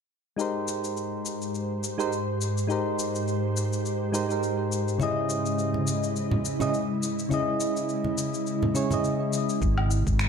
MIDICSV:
0, 0, Header, 1, 5, 480
1, 0, Start_track
1, 0, Key_signature, -4, "major"
1, 0, Tempo, 576923
1, 324, Time_signature, 4, 2, 24, 8
1, 8558, End_track
2, 0, Start_track
2, 0, Title_t, "Synth keys"
2, 0, Program_c, 0, 88
2, 304, Note_on_c, 0, 56, 75
2, 313, Note_on_c, 0, 63, 60
2, 323, Note_on_c, 0, 67, 63
2, 333, Note_on_c, 0, 70, 60
2, 343, Note_on_c, 0, 72, 78
2, 1616, Note_off_c, 0, 56, 0
2, 1621, Note_off_c, 0, 63, 0
2, 1625, Note_off_c, 0, 67, 0
2, 1630, Note_off_c, 0, 70, 0
2, 1635, Note_off_c, 0, 72, 0
2, 1646, Note_on_c, 0, 56, 79
2, 1650, Note_on_c, 0, 63, 72
2, 1655, Note_on_c, 0, 67, 73
2, 1661, Note_on_c, 0, 70, 71
2, 1667, Note_on_c, 0, 72, 90
2, 1753, Note_off_c, 0, 56, 0
2, 1755, Note_off_c, 0, 63, 0
2, 1757, Note_off_c, 0, 67, 0
2, 1760, Note_off_c, 0, 70, 0
2, 1763, Note_off_c, 0, 72, 0
2, 2224, Note_on_c, 0, 56, 70
2, 2233, Note_on_c, 0, 63, 66
2, 2244, Note_on_c, 0, 67, 72
2, 2252, Note_on_c, 0, 70, 63
2, 2263, Note_on_c, 0, 72, 80
2, 3409, Note_off_c, 0, 56, 0
2, 3413, Note_off_c, 0, 63, 0
2, 3419, Note_off_c, 0, 67, 0
2, 3422, Note_off_c, 0, 70, 0
2, 3428, Note_off_c, 0, 72, 0
2, 3431, Note_on_c, 0, 56, 77
2, 3438, Note_on_c, 0, 63, 70
2, 3442, Note_on_c, 0, 67, 72
2, 3447, Note_on_c, 0, 70, 67
2, 3453, Note_on_c, 0, 72, 85
2, 3539, Note_off_c, 0, 56, 0
2, 3543, Note_off_c, 0, 63, 0
2, 3545, Note_off_c, 0, 67, 0
2, 3548, Note_off_c, 0, 70, 0
2, 3550, Note_off_c, 0, 72, 0
2, 3559, Note_on_c, 0, 56, 62
2, 3569, Note_on_c, 0, 63, 58
2, 3580, Note_on_c, 0, 67, 61
2, 3590, Note_on_c, 0, 70, 60
2, 3599, Note_on_c, 0, 72, 66
2, 4129, Note_off_c, 0, 56, 0
2, 4134, Note_off_c, 0, 63, 0
2, 4139, Note_off_c, 0, 67, 0
2, 4144, Note_off_c, 0, 70, 0
2, 4145, Note_on_c, 0, 49, 73
2, 4149, Note_off_c, 0, 72, 0
2, 4156, Note_on_c, 0, 61, 70
2, 4166, Note_on_c, 0, 64, 73
2, 4176, Note_on_c, 0, 68, 71
2, 4185, Note_on_c, 0, 75, 85
2, 5457, Note_off_c, 0, 49, 0
2, 5462, Note_off_c, 0, 61, 0
2, 5467, Note_off_c, 0, 64, 0
2, 5472, Note_off_c, 0, 68, 0
2, 5476, Note_off_c, 0, 75, 0
2, 5487, Note_on_c, 0, 49, 90
2, 5490, Note_on_c, 0, 61, 74
2, 5498, Note_on_c, 0, 64, 77
2, 5500, Note_on_c, 0, 68, 76
2, 5506, Note_on_c, 0, 75, 95
2, 5593, Note_off_c, 0, 49, 0
2, 5595, Note_off_c, 0, 61, 0
2, 5598, Note_off_c, 0, 64, 0
2, 5600, Note_off_c, 0, 68, 0
2, 5603, Note_off_c, 0, 75, 0
2, 6065, Note_on_c, 0, 49, 75
2, 6075, Note_on_c, 0, 61, 67
2, 6084, Note_on_c, 0, 64, 67
2, 6095, Note_on_c, 0, 68, 66
2, 6104, Note_on_c, 0, 75, 84
2, 7249, Note_off_c, 0, 49, 0
2, 7254, Note_off_c, 0, 61, 0
2, 7259, Note_off_c, 0, 64, 0
2, 7264, Note_off_c, 0, 68, 0
2, 7269, Note_off_c, 0, 75, 0
2, 7272, Note_on_c, 0, 49, 73
2, 7278, Note_on_c, 0, 61, 73
2, 7282, Note_on_c, 0, 64, 70
2, 7288, Note_on_c, 0, 68, 70
2, 7292, Note_on_c, 0, 73, 87
2, 7380, Note_off_c, 0, 49, 0
2, 7383, Note_off_c, 0, 61, 0
2, 7385, Note_off_c, 0, 64, 0
2, 7388, Note_off_c, 0, 68, 0
2, 7390, Note_off_c, 0, 73, 0
2, 7396, Note_on_c, 0, 49, 66
2, 7406, Note_on_c, 0, 61, 64
2, 7417, Note_on_c, 0, 64, 65
2, 7425, Note_on_c, 0, 68, 62
2, 7436, Note_on_c, 0, 75, 75
2, 7967, Note_off_c, 0, 49, 0
2, 7972, Note_off_c, 0, 61, 0
2, 7978, Note_off_c, 0, 64, 0
2, 7982, Note_off_c, 0, 68, 0
2, 7987, Note_off_c, 0, 75, 0
2, 8558, End_track
3, 0, Start_track
3, 0, Title_t, "Ambient pad"
3, 0, Program_c, 1, 92
3, 328, Note_on_c, 1, 72, 87
3, 329, Note_on_c, 1, 67, 72
3, 330, Note_on_c, 1, 44, 71
3, 330, Note_on_c, 1, 56, 69
3, 4133, Note_off_c, 1, 67, 0
3, 4133, Note_off_c, 1, 72, 0
3, 4134, Note_off_c, 1, 44, 0
3, 4163, Note_on_c, 1, 49, 77
3, 4165, Note_on_c, 1, 75, 80
3, 4167, Note_on_c, 1, 64, 71
3, 6065, Note_off_c, 1, 75, 0
3, 7970, Note_off_c, 1, 49, 0
3, 7972, Note_off_c, 1, 64, 0
3, 7973, Note_off_c, 1, 56, 0
3, 8004, Note_on_c, 1, 56, 77
3, 8004, Note_on_c, 1, 60, 70
3, 8005, Note_on_c, 1, 67, 84
3, 8558, Note_off_c, 1, 56, 0
3, 8558, Note_off_c, 1, 60, 0
3, 8558, Note_off_c, 1, 67, 0
3, 8558, End_track
4, 0, Start_track
4, 0, Title_t, "Fingered electric bass"
4, 0, Program_c, 2, 33
4, 8003, Note_on_c, 2, 32, 93
4, 8337, Note_off_c, 2, 32, 0
4, 8378, Note_on_c, 2, 32, 80
4, 8558, Note_off_c, 2, 32, 0
4, 8558, End_track
5, 0, Start_track
5, 0, Title_t, "Drums"
5, 328, Note_on_c, 9, 82, 29
5, 411, Note_off_c, 9, 82, 0
5, 565, Note_on_c, 9, 82, 67
5, 649, Note_off_c, 9, 82, 0
5, 701, Note_on_c, 9, 82, 39
5, 785, Note_off_c, 9, 82, 0
5, 807, Note_on_c, 9, 82, 28
5, 890, Note_off_c, 9, 82, 0
5, 1045, Note_on_c, 9, 82, 73
5, 1128, Note_off_c, 9, 82, 0
5, 1180, Note_on_c, 9, 82, 38
5, 1263, Note_off_c, 9, 82, 0
5, 1287, Note_on_c, 9, 82, 27
5, 1371, Note_off_c, 9, 82, 0
5, 1527, Note_on_c, 9, 82, 70
5, 1610, Note_off_c, 9, 82, 0
5, 1663, Note_on_c, 9, 82, 35
5, 1746, Note_off_c, 9, 82, 0
5, 1768, Note_on_c, 9, 82, 29
5, 1852, Note_off_c, 9, 82, 0
5, 2007, Note_on_c, 9, 82, 66
5, 2091, Note_off_c, 9, 82, 0
5, 2143, Note_on_c, 9, 82, 39
5, 2226, Note_off_c, 9, 82, 0
5, 2247, Note_on_c, 9, 82, 30
5, 2331, Note_off_c, 9, 82, 0
5, 2488, Note_on_c, 9, 82, 69
5, 2571, Note_off_c, 9, 82, 0
5, 2624, Note_on_c, 9, 82, 42
5, 2707, Note_off_c, 9, 82, 0
5, 2728, Note_on_c, 9, 82, 29
5, 2811, Note_off_c, 9, 82, 0
5, 2968, Note_on_c, 9, 82, 72
5, 3051, Note_off_c, 9, 82, 0
5, 3103, Note_on_c, 9, 82, 41
5, 3186, Note_off_c, 9, 82, 0
5, 3208, Note_on_c, 9, 82, 32
5, 3291, Note_off_c, 9, 82, 0
5, 3447, Note_on_c, 9, 82, 70
5, 3530, Note_off_c, 9, 82, 0
5, 3583, Note_on_c, 9, 82, 36
5, 3666, Note_off_c, 9, 82, 0
5, 3688, Note_on_c, 9, 82, 31
5, 3771, Note_off_c, 9, 82, 0
5, 3927, Note_on_c, 9, 82, 67
5, 4010, Note_off_c, 9, 82, 0
5, 4063, Note_on_c, 9, 82, 39
5, 4146, Note_off_c, 9, 82, 0
5, 4157, Note_on_c, 9, 63, 76
5, 4168, Note_on_c, 9, 82, 30
5, 4240, Note_off_c, 9, 63, 0
5, 4251, Note_off_c, 9, 82, 0
5, 4406, Note_on_c, 9, 82, 73
5, 4489, Note_off_c, 9, 82, 0
5, 4541, Note_on_c, 9, 82, 39
5, 4624, Note_off_c, 9, 82, 0
5, 4648, Note_on_c, 9, 82, 28
5, 4731, Note_off_c, 9, 82, 0
5, 4778, Note_on_c, 9, 63, 57
5, 4862, Note_off_c, 9, 63, 0
5, 4886, Note_on_c, 9, 82, 78
5, 4969, Note_off_c, 9, 82, 0
5, 5021, Note_on_c, 9, 82, 44
5, 5104, Note_off_c, 9, 82, 0
5, 5127, Note_on_c, 9, 82, 31
5, 5210, Note_off_c, 9, 82, 0
5, 5254, Note_on_c, 9, 64, 90
5, 5337, Note_off_c, 9, 64, 0
5, 5367, Note_on_c, 9, 82, 75
5, 5450, Note_off_c, 9, 82, 0
5, 5493, Note_on_c, 9, 63, 81
5, 5497, Note_on_c, 9, 64, 67
5, 5502, Note_on_c, 9, 82, 38
5, 5576, Note_off_c, 9, 63, 0
5, 5580, Note_off_c, 9, 64, 0
5, 5585, Note_off_c, 9, 82, 0
5, 5608, Note_on_c, 9, 82, 31
5, 5691, Note_off_c, 9, 82, 0
5, 5848, Note_on_c, 9, 82, 74
5, 5931, Note_off_c, 9, 82, 0
5, 5983, Note_on_c, 9, 82, 40
5, 6066, Note_off_c, 9, 82, 0
5, 6083, Note_on_c, 9, 63, 80
5, 6087, Note_on_c, 9, 82, 31
5, 6166, Note_off_c, 9, 63, 0
5, 6171, Note_off_c, 9, 82, 0
5, 6326, Note_on_c, 9, 82, 73
5, 6410, Note_off_c, 9, 82, 0
5, 6462, Note_on_c, 9, 82, 42
5, 6545, Note_off_c, 9, 82, 0
5, 6565, Note_on_c, 9, 82, 30
5, 6648, Note_off_c, 9, 82, 0
5, 6693, Note_on_c, 9, 63, 65
5, 6776, Note_off_c, 9, 63, 0
5, 6804, Note_on_c, 9, 82, 78
5, 6888, Note_off_c, 9, 82, 0
5, 6940, Note_on_c, 9, 82, 44
5, 7023, Note_off_c, 9, 82, 0
5, 7044, Note_on_c, 9, 82, 30
5, 7127, Note_off_c, 9, 82, 0
5, 7176, Note_on_c, 9, 64, 82
5, 7259, Note_off_c, 9, 64, 0
5, 7284, Note_on_c, 9, 82, 78
5, 7367, Note_off_c, 9, 82, 0
5, 7410, Note_on_c, 9, 63, 86
5, 7417, Note_on_c, 9, 64, 73
5, 7417, Note_on_c, 9, 82, 43
5, 7493, Note_off_c, 9, 63, 0
5, 7500, Note_off_c, 9, 82, 0
5, 7501, Note_off_c, 9, 64, 0
5, 7523, Note_on_c, 9, 82, 31
5, 7606, Note_off_c, 9, 82, 0
5, 7762, Note_on_c, 9, 82, 71
5, 7846, Note_off_c, 9, 82, 0
5, 7899, Note_on_c, 9, 82, 43
5, 7982, Note_off_c, 9, 82, 0
5, 8002, Note_on_c, 9, 36, 117
5, 8003, Note_on_c, 9, 82, 32
5, 8085, Note_off_c, 9, 36, 0
5, 8087, Note_off_c, 9, 82, 0
5, 8133, Note_on_c, 9, 77, 60
5, 8216, Note_off_c, 9, 77, 0
5, 8243, Note_on_c, 9, 82, 72
5, 8326, Note_off_c, 9, 82, 0
5, 8377, Note_on_c, 9, 36, 91
5, 8379, Note_on_c, 9, 82, 40
5, 8460, Note_off_c, 9, 36, 0
5, 8462, Note_off_c, 9, 82, 0
5, 8481, Note_on_c, 9, 26, 92
5, 8485, Note_on_c, 9, 82, 30
5, 8558, Note_off_c, 9, 26, 0
5, 8558, Note_off_c, 9, 82, 0
5, 8558, End_track
0, 0, End_of_file